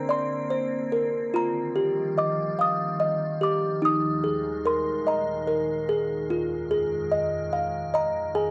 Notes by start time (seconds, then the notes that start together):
Already playing: D3 A#3 C4 D4 A#4 C5 A#5
0.09 D5 C6
0.50 C5
0.92 A#4
1.33 D#3 F3 G3 F4 A#5
1.76 G4
2.18 D#5 D6
2.59 F5 D#6
3.00 D#5
3.41 G4 D6
3.82 D#2 A#2 G#3 D#4 D#6
4.24 G#4
4.66 A#4 C6
5.07 D#5 A#5
5.47 A#4
5.89 G#4
6.30 F2 D#3 G#3 F4
6.71 G#4
7.12 D#5
7.53 F5
7.94 D#5 A#5
8.35 G#4 G#5